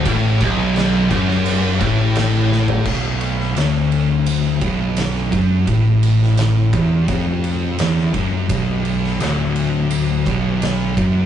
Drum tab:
CC |x-x-x-x-x-x-x---|x---------------|----------------|----------------|
RD |----------------|--x-x-x-x-x-x-x-|x-x-x-x-x-x-x-x-|x-x-x-x-x-x-x-x-|
SD |--o-o--o----o-o-|---oo-------oo--|---oo-------oo--|---oo-------o---|
FT |---------------o|----------------|----------------|----------------|
BD |o-o---o---o-----|o---------o---o-|o-----o-o-----o-|o---------o---o-|